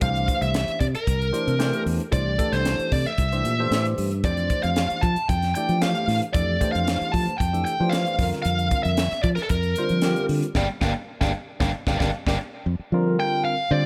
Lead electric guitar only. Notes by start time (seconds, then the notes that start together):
0.02 F5
0.42 E5
0.80 D5
0.95 A#4
2.13 D5
2.53 C5
2.92 D5
3.06 E5
4.25 D5
4.63 F5
5.01 A5
5.29 G5
5.55 G5
5.82 F5
6.33 D5
6.72 F5
7.12 A5
7.38 G5
7.65 G5
7.89 F5
8.42 F5
8.83 E5
9.23 D5
9.35 A#4
9.43 A4
9.50 A#4
10.56 D5 F5 G5
10.82 D5 F5 G5
11.21 D5 F5 G5
11.60 D5 F5 G5
11.88 D5 F5 G5
11.99 D5 F5 G5
12.28 D5 F5 G5
13.20 G5
13.45 F5
13.71 D5